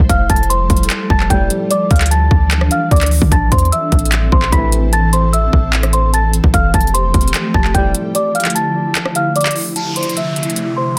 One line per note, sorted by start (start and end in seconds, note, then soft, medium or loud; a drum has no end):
0.09 0.29 F1 loud
0.09 3.28 F3 medium
0.09 1.69 G3 medium
0.09 1.69 A4 medium
0.09 0.25 F5 medium
0.09 0.25 F6 medium
0.09 kick loud
0.09 closed hi-hat medium
0.30 0.68 F1 loud
0.30 0.45 A5 medium
0.30 0.45 A6 medium
0.30 kick medium
0.30 closed hi-hat medium
0.36 closed hi-hat medium
0.43 closed hi-hat soft
0.50 1.07 C5 medium
0.50 1.06 C6 medium
0.50 closed hi-hat medium
0.70 0.89 F1 loud
0.70 kick medium
0.70 closed hi-hat medium
0.77 closed hi-hat medium
0.83 closed hi-hat medium
0.90 clap loud
0.90 closed hi-hat medium
1.10 1.29 F1 loud
1.10 1.25 A5 medium
1.10 1.26 A6 medium
1.10 kick loud
1.20 clap medium
1.30 1.50 F1 loud
1.30 1.68 A2 medium
1.30 1.68 C3 loud
1.30 1.68 G3 loud
1.30 1.45 G5 medium
1.30 1.46 G6 medium
1.30 kick medium
1.30 closed hi-hat medium
1.50 closed hi-hat medium
1.71 3.30 E3 medium
1.71 3.30 D4 medium
1.71 1.86 D5 medium
1.71 1.86 D6 medium
1.71 closed hi-hat medium
1.91 2.29 D2 loud
1.91 2.06 F5 medium
1.91 2.06 F6 medium
1.91 kick loud
1.91 closed hi-hat soft
1.96 closed hi-hat medium
2.01 clap medium
2.01 closed hi-hat medium
2.06 closed hi-hat medium
2.11 2.68 A5 medium
2.11 2.68 A6 medium
2.11 closed hi-hat medium
2.31 2.70 D2 loud
2.31 kick medium
2.51 clap loud
2.51 closed hi-hat medium
2.61 cross-stick loud
2.71 2.87 F5 medium
2.71 2.87 F6 medium
2.71 closed hi-hat medium
2.91 3.20 D2 loud
2.91 3.07 D5 medium
2.91 3.07 D6 medium
2.91 kick medium
2.91 closed hi-hat soft
2.96 closed hi-hat medium
3.01 clap medium
3.01 closed hi-hat medium
3.06 closed hi-hat medium
3.11 open hi-hat medium
3.22 3.31 D3 loud
3.22 kick medium
3.32 3.51 A1 loud
3.32 6.51 E3 medium
3.32 6.51 C4 medium
3.32 6.51 A4 medium
3.32 3.47 A5 medium
3.32 3.47 A6 medium
3.32 kick loud
3.32 closed hi-hat medium
3.52 3.71 E2 loud
3.52 3.67 C5 medium
3.52 3.67 C6 medium
3.52 kick loud
3.52 closed hi-hat medium
3.58 closed hi-hat medium
3.65 closed hi-hat soft
3.72 4.29 E5 medium
3.72 4.29 E6 medium
3.72 closed hi-hat medium
3.92 4.31 A1 loud
3.92 kick medium
3.92 closed hi-hat medium
3.99 closed hi-hat medium
4.05 closed hi-hat medium
4.12 clap loud
4.12 closed hi-hat medium
4.32 4.52 A1 loud
4.32 4.48 C5 medium
4.32 4.48 C6 medium
4.32 kick loud
4.42 clap medium
4.52 5.49 A1 loud
4.52 4.91 A2 loud
4.52 4.91 C3 loud
4.52 4.91 E3 loud
4.52 4.68 B5 medium
4.52 4.68 B6 medium
4.52 kick medium
4.52 closed hi-hat medium
4.72 closed hi-hat medium
4.93 5.08 A5 medium
4.93 5.08 A6 medium
4.93 closed hi-hat medium
5.13 5.29 C5 medium
5.13 5.28 C6 medium
5.13 closed hi-hat medium
5.33 5.90 E5 medium
5.33 5.90 E6 medium
5.33 closed hi-hat medium
5.53 6.40 A1 loud
5.53 kick medium
5.73 clap loud
5.73 closed hi-hat soft
5.83 cross-stick loud
5.83 closed hi-hat medium
5.93 6.09 C5 medium
5.93 6.09 C6 medium
5.93 closed hi-hat medium
6.13 6.29 A5 medium
6.13 6.29 A6 medium
6.13 closed hi-hat medium
6.33 closed hi-hat medium
6.44 6.53 A1 loud
6.44 kick medium
6.54 6.73 F1 loud
6.54 8.13 F3 medium
6.54 8.13 A3 medium
6.54 8.13 G4 loud
6.54 6.69 F5 medium
6.54 6.69 F6 medium
6.54 kick loud
6.54 closed hi-hat medium
6.74 7.13 F1 loud
6.74 6.89 A5 medium
6.74 6.90 A6 medium
6.74 kick loud
6.74 closed hi-hat medium
6.81 closed hi-hat medium
6.87 closed hi-hat soft
6.94 7.51 C5 medium
6.94 7.51 C6 medium
6.94 closed hi-hat medium
7.14 7.33 F1 loud
7.14 kick medium
7.14 closed hi-hat medium
7.21 closed hi-hat medium
7.28 closed hi-hat medium
7.34 clap loud
7.34 closed hi-hat medium
7.54 7.74 F1 loud
7.54 7.70 A5 medium
7.54 7.70 A6 medium
7.54 kick loud
7.64 clap medium
7.74 7.94 F1 loud
7.74 8.13 A2 medium
7.74 8.13 C3 loud
7.74 8.13 G3 loud
7.74 7.90 G5 medium
7.74 7.90 G6 medium
7.74 kick medium
7.74 closed hi-hat medium
7.95 closed hi-hat medium
8.15 9.74 D3 medium
8.15 9.74 F3 medium
8.15 9.74 E4 medium
8.15 8.30 D5 medium
8.15 8.31 D6 medium
8.15 closed hi-hat medium
8.35 8.50 F5 medium
8.35 8.51 F6 medium
8.35 closed hi-hat soft
8.40 closed hi-hat medium
8.45 clap medium
8.45 closed hi-hat medium
8.50 closed hi-hat medium
8.55 9.12 A5 medium
8.55 9.12 A6 medium
8.55 closed hi-hat medium
8.95 clap loud
8.95 closed hi-hat medium
9.05 cross-stick loud
9.15 9.31 F5 medium
9.15 9.31 F6 medium
9.15 closed hi-hat medium
9.36 9.51 D5 medium
9.36 9.52 D6 medium
9.36 closed hi-hat soft
9.41 closed hi-hat medium
9.46 clap medium
9.46 closed hi-hat medium
9.51 closed hi-hat medium
9.56 open hi-hat medium
9.76 10.99 C3 medium
9.76 10.99 A3 medium
9.76 10.99 E4 medium
9.76 9.91 A5 medium
9.76 9.92 A6 medium
9.76 closed hi-hat medium
9.76 downlifter medium
9.96 10.12 C5 medium
9.96 10.11 C6 medium
9.96 closed hi-hat medium
10.03 closed hi-hat medium
10.09 closed hi-hat soft
10.16 10.74 E5 medium
10.16 10.73 E6 medium
10.16 closed hi-hat medium
10.36 closed hi-hat medium
10.43 closed hi-hat medium
10.50 closed hi-hat medium
10.56 closed hi-hat medium
10.77 10.92 C5 medium
10.77 10.92 C6 medium